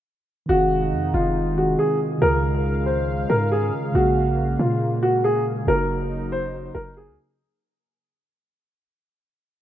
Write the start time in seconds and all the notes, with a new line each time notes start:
0.46 F1 C3 D#3 G#3 C4 D#4 F#4
0.50 G#4 F5
0.93 F2
1.14 F1 F4
1.55 D#3 C4 F4 F#4 G#4
1.79 G#4
2.18 C#2 C#3 G#3 A#4
2.22 C#3 F4 G#4 F5
2.86 C5
3.30 G#2 A#4
3.52 G#4
3.92 A#1 C#3 A#3 F#4
3.96 G#4 F5
4.59 A#2 F4
5.03 F#4
5.24 G#4
5.65 F#1 C#3 F#3 A#3 D#4 A#4
5.69 D#4 F#4
6.32 C5
6.75 F#1 A#4
6.97 G#4
7.08 C#2